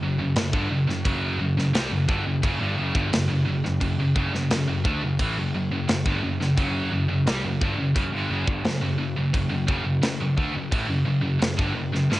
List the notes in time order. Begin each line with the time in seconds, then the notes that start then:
0.01 F#1 F#2 C#3
0.18 F#1 F#2 C#3
0.36 F#1 F#2 C#3, snare, crash
0.52 G1 G2 D3, kick
0.70 F#1 F#2 C#3
0.87 F#1 F#2 C#3, snare
1.04 F#1 F#2 C#3 F#3, kick, crash
1.39 F#1 F#2 C#3
1.57 F#1 F#2 C#3, snare
1.74 C2 C3 G3, snare, crash
1.91 F#1 F#2 C#3
2.08 G1 G2 D3, kick
2.25 F#1 F#2 C#3
2.42 F#1 F#2 C#3, kick, crash
2.59 G1 G2 D3
2.77 F#1 F#2 C#3
2.94 G1 G2 D3, kick
3.12 F#1 F#2 C#3, snare, crash
3.28 F#1 F#2 C#3
3.46 F#1 F#2 C#3
3.64 F#1 F#2 C#3, snare
3.80 F#1 F#2 C#3, kick, crash
3.98 F#1 F#2 C#3
4.15 F#1 F#2 C#3, kick
4.33 F#1 F#2 C#3, snare
4.50 F#1 F#2 C#3, snare, crash
4.67 F#1 F#2 C#3
4.84 D2 D3 A3, kick
5.03 F#1 F#2 C#3
5.19 A1 A2 E3, kick, crash
5.37 F#1 F#2 C#3
5.54 F#1 F#2 C#3
5.71 F#1 F#2 C#3
5.88 F#1 F#2 C#3, snare, crash
6.06 G1 G2 D3, kick
6.22 F#1 F#2 C#3
6.40 F#1 F#2 C#3, snare
6.57 F#1 F#2 C#3 F#3, kick, crash
6.91 F#1 F#2 C#3
7.09 F#1 F#2 C#3
7.26 C2 C3 G3, snare, crash
7.44 F#1 F#2 C#3
7.61 G1 G2 D3, kick
7.78 F#1 F#2 C#3
7.95 F#1 F#2 C#3, kick, crash
8.12 G1 G2 D3
8.29 F#1 F#2 C#3
8.47 G1 G2 D3, kick
8.64 F#1 F#2 C#3, snare, crash
8.81 F#1 F#2 C#3
8.98 F#1 F#2 C#3
9.16 F#1 F#2 C#3
9.33 F#1 F#2 C#3, kick, crash
9.50 F#1 F#2 C#3
9.67 F#1 F#2 C#3, kick
9.84 F#1 F#2 C#3
10.02 F#1 F#2 C#3, snare, crash
10.20 F#1 F#2 C#3
10.37 D2 D3 A3, kick
10.54 F#1 F#2 C#3
10.71 A1 A2 E3, kick, crash
10.88 F#1 F#2 C#3
11.05 F#1 F#2 C#3
11.21 F#1 F#2 C#3
11.39 F#1 F#2 C#3, snare, crash
11.57 G1 G2 D3, kick
11.74 F#1 F#2 C#3
11.92 F#1 F#2 C#3, snare
12.10 G1 G2 D3 G3, snare